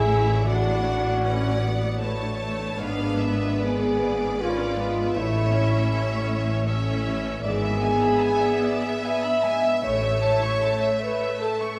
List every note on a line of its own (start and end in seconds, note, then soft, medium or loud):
0.00 2.75 A1 medium
0.00 0.44 A2 medium
0.00 2.74 A2 medium
0.00 0.24 C#4 soft
0.00 0.46 E4 medium
0.00 0.49 E4 soft
0.00 0.46 G#4 medium
0.00 2.52 A4 soft
0.00 0.49 C#5 medium
0.00 0.45 E5 medium
0.00 0.49 E5 soft
0.00 2.83 A5 soft
0.06 0.49 E3 soft
0.06 0.46 C#5 medium
0.25 0.49 C#4 soft
0.44 1.58 A2 medium
0.44 2.82 A2 medium
0.44 1.23 D4 medium
0.44 2.36 F#4 medium
0.44 1.23 D5 medium
0.48 1.25 F#5 medium
0.66 2.59 B3 soft
0.85 2.21 D4 soft
1.04 2.82 F#4 soft
1.23 1.63 C#4 medium
1.23 2.02 B4 soft
1.23 2.00 D5 medium
1.23 2.01 F#5 medium
1.44 1.82 D5 soft
1.62 2.02 B3 medium
1.62 2.83 F#5 soft
1.83 3.81 D5 soft
2.01 2.39 A3 medium
2.01 3.62 B4 soft
2.01 2.78 C#5 medium
2.01 2.78 A5 medium
2.22 3.20 D4 soft
2.40 2.78 A3 medium
2.40 2.83 A3 soft
2.60 2.98 B3 soft
2.79 5.11 G#1 medium
2.79 5.11 G#2 medium
2.79 5.18 G#2 medium
2.79 4.36 B3 medium
2.79 3.59 D4 medium
2.79 4.36 B4 medium
2.79 3.21 F5 medium
3.00 4.94 B3 soft
3.21 4.57 D4 soft
3.21 3.62 E5 medium
3.43 5.19 F4 soft
3.61 4.39 G#4 medium
3.61 4.37 B4 soft
3.61 5.15 D5 medium
3.82 4.18 D5 soft
4.02 5.19 F5 soft
4.20 5.19 D5 soft
4.38 4.78 C#4 medium
4.38 5.16 F4 medium
4.38 5.13 B4 medium
4.38 5.18 B4 soft
4.58 5.19 D4 soft
4.76 5.18 G#3 soft
4.76 5.16 B3 medium
4.96 5.18 B3 soft
5.14 7.40 A1 medium
5.14 7.46 A2 medium
5.14 7.41 A2 medium
5.14 5.52 A3 medium
5.14 7.06 E4 medium
5.14 5.90 C#5 medium
5.14 6.64 E5 medium
5.33 7.25 A3 soft
5.52 6.87 C#4 soft
5.52 6.67 C#4 medium
5.71 7.99 E4 soft
5.91 6.67 A4 soft
5.91 6.66 C#5 medium
6.10 6.47 C#5 soft
6.29 8.61 E5 medium
6.48 7.47 C#5 soft
6.68 7.43 C#4 medium
6.68 7.47 A4 medium
6.68 7.43 C#5 medium
6.68 7.44 E5 medium
6.88 7.48 C#4 soft
7.06 7.47 E3 soft
7.26 7.47 A3 soft
7.43 8.07 G#1 medium
7.43 8.07 G#2 medium
7.43 9.87 G#2 medium
7.43 9.79 B3 medium
7.43 9.01 G#4 loud
7.43 7.61 D5 medium
7.43 11.79 E5 medium
7.63 9.62 B3 soft
7.63 7.82 E5 medium
7.81 9.22 D4 soft
7.81 8.00 G#5 medium
8.00 10.39 E4 medium
8.00 8.20 B5 medium
8.20 9.02 B4 medium
8.20 8.41 G#5 medium
8.40 8.82 D5 medium
8.40 8.62 E5 medium
8.62 8.84 D5 medium
8.62 10.99 E5 medium
8.83 9.87 D5 soft
8.83 9.05 E5 medium
9.03 9.86 B4 medium
9.03 9.84 E5 medium
9.03 9.25 G#5 medium
9.23 9.86 D4 soft
9.23 9.44 B5 soft
9.43 9.86 G#3 medium
9.43 9.64 G#5 medium
9.63 9.86 B3 soft
9.63 9.84 E5 medium
9.81 10.48 A1 medium
9.81 11.79 A2 medium
9.81 10.48 A2 medium
9.81 11.79 A3 medium
9.81 10.98 C#5 medium
9.81 10.02 C#5 medium
10.02 11.79 A3 soft
10.02 10.23 E5 medium
10.21 11.59 C#4 soft
10.21 10.42 A5 medium
10.40 11.79 E4 soft
10.40 10.62 C#6 medium
10.60 11.39 A4 medium
10.60 10.81 A5 medium
10.81 11.19 C#5 soft
10.81 11.01 E5 medium
11.00 11.42 B4 medium
11.00 11.21 C#5 soft
11.00 11.79 E5 soft
11.21 11.79 C#5 soft
11.21 11.41 E5 medium
11.40 11.79 A4 medium
11.40 11.61 A5 medium
11.60 11.79 C#4 soft
11.60 11.79 C#6 soft